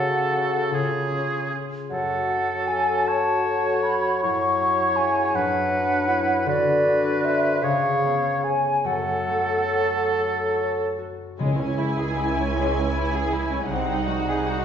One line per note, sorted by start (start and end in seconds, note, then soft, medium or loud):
0.00 0.69 C#3 soft
0.00 1.55 C#3 soft
0.00 1.09 C#4 soft
0.00 0.30 F#4 soft
0.00 0.73 F#4 soft
0.00 0.31 A4 soft
0.00 0.76 A4 soft
0.00 0.69 F#5 soft
0.31 0.74 F#4 soft
0.31 0.75 A4 soft
0.71 1.94 C#3 soft
0.71 1.59 F4 soft
0.71 1.60 G#4 soft
1.10 2.28 C#4 soft
1.50 1.94 F4 soft
1.50 1.94 G#4 soft
1.90 4.22 F#2 soft
1.90 6.43 F#3 soft
1.90 4.24 F#4 soft
1.90 3.10 A4 soft
1.90 2.69 F#5 soft
2.29 4.59 C#4 soft
2.68 3.44 A4 soft
2.68 3.08 G#5 soft
3.06 5.37 C#5 soft
3.06 4.22 C#5 soft
3.06 3.84 A5 soft
3.45 4.26 A4 soft
3.83 4.26 F#4 soft
3.83 4.20 B5 soft
4.21 5.34 F#2 soft
4.21 5.37 E4 soft
4.21 5.37 C#5 soft
4.21 4.98 C#6 medium
4.61 5.38 C#4 soft
4.96 5.38 E4 soft
4.96 5.38 G#4 soft
4.96 5.36 G#5 soft
5.35 6.50 F#2 soft
5.35 5.71 D4 soft
5.35 6.48 B4 soft
5.35 6.47 F#5 medium
5.71 6.83 D4 soft
5.71 6.09 D4 soft
6.07 6.48 E4 soft
6.07 7.22 F#4 soft
6.07 6.50 B4 soft
6.46 7.66 D3 soft
6.46 7.60 D3 medium
6.46 7.62 F#4 soft
6.46 7.65 B4 medium
6.46 7.27 D5 medium
6.85 7.66 D4 soft
7.23 7.66 F#4 soft
7.23 7.66 C5 soft
7.23 7.66 E5 medium
7.62 8.88 C#3 soft
7.62 8.53 C#3 soft
7.62 8.53 G#4 soft
7.62 8.55 C#5 soft
7.62 8.45 F5 medium
8.02 8.89 B3 soft
8.43 8.89 G#4 soft
8.43 9.69 C#5 soft
8.43 8.88 G#5 soft
8.84 11.43 F#2 soft
8.84 11.03 F#3 soft
8.84 11.02 A4 soft
8.84 11.03 A4 soft
8.84 10.15 F#5 soft
9.28 11.43 A3 soft
9.71 10.55 C#5 soft
10.14 11.43 A4 soft
10.56 12.55 C#5 soft
10.98 11.43 F#4 soft
11.39 13.67 C#2 soft
11.39 13.68 C#2 soft
11.39 13.74 C#3 soft
11.39 12.54 C#3 medium
11.39 11.58 G#3 soft
11.39 13.67 E4 soft
11.39 13.68 G#5 soft
11.58 11.79 C#4 soft
11.78 13.31 G#3 soft
11.78 11.99 E4 soft
11.99 12.19 G#4 soft
12.17 12.94 E4 soft
12.17 12.38 E4 soft
12.39 12.58 C#4 soft
12.56 12.78 G#3 soft
12.56 13.74 C#5 soft
12.78 12.97 C#4 soft
12.95 13.74 E4 soft
12.95 13.16 E4 soft
13.15 13.34 G#4 soft
13.32 14.07 G#3 soft
13.32 13.53 E4 soft
13.52 13.71 C#4 soft
13.69 14.65 C2 soft
13.69 14.65 C3 soft
13.69 13.89 C4 soft
13.69 14.65 D#4 soft
13.69 14.65 F#5 soft
13.93 14.10 D#4 soft
14.08 14.65 G#3 soft
14.08 14.28 F#4 soft
14.28 14.47 G#4 soft
14.45 14.65 F#4 soft